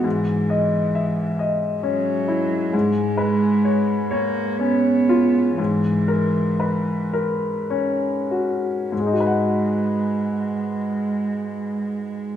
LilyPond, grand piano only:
\new Staff \with { instrumentName = "Grand piano" } { \time 3/4 \key gis \minor \tempo 4 = 60 gis,8 dis''8 e''8 dis''8 cis'8 e'8 | gis,8 b'8 cis''8 cis''8 cis'8 eis'8 | gis,8 ais'8 b'8 ais'8 cis'8 fis'8 | <gis, gis dis' fis' b' fis''>2. | }